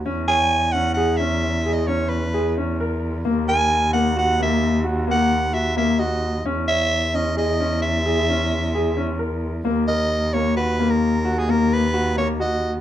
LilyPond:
<<
  \new Staff \with { instrumentName = "Soprano saxophone" } { \time 7/4 \key cis \dorian \tempo 4 = 131 r8 gis''4 fis''8 fis''8 e''4~ e''16 dis''16 cis''8 b'4 r4. | r8 gis''4 fis''8 fis''8 e''4 r8 fis''4 e''8 e''8 dis''4 | r8 e''4 dis''8 dis''4 e''2. r4 | r8 dis''4 cis''8 b'8. ais'4 gis'16 ais'8 b'4 cis''8 dis''8. r16 | }
  \new Staff \with { instrumentName = "Grand piano" } { \time 7/4 \key cis \dorian cis'8 cis''4 cis'8 gis'8 cis'4 gis'8 cis'4 gis'8 cis'8 ais'4 | ais8 ais'4 ais8 fis'8 ais4 fis'8 ais4 fis'8 ais8 fis'4 | cis'8 cis''4 cis'8 gis'8 cis'4 gis'8 cis'4 gis'8 cis'8 ais'4 | ais8 ais'4 ais8 fis'8 ais4 fis'8 ais4 fis'8 ais8 fis'4 | }
  \new Staff \with { instrumentName = "Cello" } { \clef bass \time 7/4 \key cis \dorian e,1.~ e,4 | dis,1.~ dis,4 | e,1.~ e,4 | dis,1.~ dis,4 | }
>>